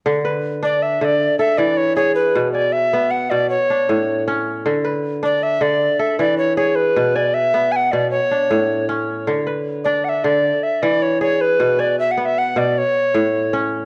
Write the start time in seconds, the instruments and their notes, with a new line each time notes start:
0.06 kora D3
0.25 kora B4
0.63 kora D4, recorder D5
0.82 recorder E5
1.01 kora D3, recorder D5 E5
1.39 kora A4, recorder E5
1.58 kora E3, recorder D5
1.77 recorder C#5
1.97 kora G#4, recorder C#5
2.15 recorder B4
2.35 kora B2
2.53 recorder D5, kora G#5
2.72 recorder E5
2.93 kora B3
3.11 recorder F#5
3.30 kora B2, recorder D5
3.50 recorder C#5
3.70 kora D4
3.89 kora A2
4.28 kora C#4
4.66 kora D3
4.85 kora B4
5.23 kora D4, recorder D5
5.43 recorder E5
5.61 kora D3, recorder D5
5.99 kora A4, recorder E5
6.19 kora E3, recorder D5
6.38 recorder C#5
6.57 kora G#4, recorder C#5
6.75 recorder B4
6.96 kora B2
7.16 recorder D5, kora G#5
7.34 recorder E5
7.54 kora B3
7.72 recorder G#5
7.76 recorder F#5
7.92 kora B2, recorder D5
8.11 recorder C#5
8.31 kora D4
8.50 kora A2
8.89 kora C#4
9.27 kora D3
9.47 kora B4
9.84 kora D4, recorder D5
10.04 recorder F#5
10.09 recorder E5
10.24 kora D3, recorder D5
10.63 recorder E5
10.82 kora E3, recorder D5
11.02 recorder C#5
11.21 kora G#4, recorder C#5
11.41 recorder B4
11.60 kora B2
11.79 recorder D5, kora G#5
11.99 recorder E5
12.11 recorder F#5
12.17 kora B3
12.25 recorder E5
12.38 recorder F#5
12.56 kora B2, recorder D5
12.78 recorder C#5
13.14 kora A2
13.53 kora C#4